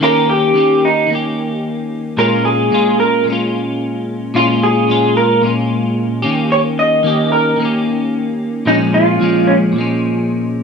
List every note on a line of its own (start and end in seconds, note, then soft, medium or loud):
0.00 0.53 D#3 medium
0.00 0.55 A#3 medium
0.00 0.56 C#4 medium
0.00 0.56 G4 loud
0.00 0.29 A#4 loud
0.30 0.85 G4 loud
0.54 1.05 D#3 medium
0.54 1.10 A#3 medium
0.54 1.12 C#4 medium
0.54 1.11 G4 medium
0.85 1.09 D#4 medium
1.07 2.16 D#3 medium
1.07 2.18 A#3 soft
1.13 2.18 C#4 medium
1.13 2.19 G4 medium
2.17 2.69 A#2 medium
2.17 2.71 G#3 medium
2.17 2.73 C#4 medium
2.17 2.73 F4 medium
2.17 2.45 A#4 loud
2.45 2.95 G#4 medium
2.70 3.23 A#2 medium
2.70 3.26 G#3 medium
2.70 3.30 C#4 medium
2.70 3.27 F4 medium
3.00 3.25 A#4 medium
3.24 4.33 A#2 medium
3.24 4.34 G#3 medium
3.30 4.36 C#4 medium
3.30 4.36 F4 medium
4.34 4.86 A#2 medium
4.34 4.88 G#3 medium
4.34 4.90 C#4 medium
4.34 4.43 F4 medium
4.34 4.90 F4 medium
4.63 5.17 G#4 medium
4.87 5.40 A#2 medium
4.87 5.42 G#3 medium
4.87 5.44 C#4 medium
4.87 5.44 F4 medium
5.17 5.41 A#4 loud
5.41 6.23 A#2 medium
5.41 6.24 G#3 medium
5.41 6.23 C#4 medium
5.46 6.22 F4 medium
6.22 7.02 D#3 medium
6.22 7.04 A#3 medium
6.22 7.05 C#4 medium
6.22 7.04 G4 medium
6.52 6.59 C#5 medium
6.79 7.32 D#5 loud
7.03 7.55 D#3 medium
7.03 7.59 A#3 medium
7.03 7.62 C#4 medium
7.03 7.60 G4 medium
7.32 7.57 A#4 medium
7.56 8.66 D#3 medium
7.56 8.67 A#3 medium
7.62 8.68 C#4 medium
7.62 8.70 G4 medium
8.65 9.18 A#2 medium
8.65 9.20 F3 medium
8.65 9.22 G#3 medium
8.65 9.23 C#4 medium
8.65 8.75 D#4 medium
8.94 9.50 F4 loud
9.19 9.71 A#2 medium
9.19 9.75 F3 medium
9.19 9.78 G#3 medium
9.19 9.80 C#4 medium
9.47 9.55 C#4 medium
9.72 10.63 A#2 medium
9.72 10.63 F3 soft
9.78 10.63 G#3 medium
9.78 10.63 C#4 medium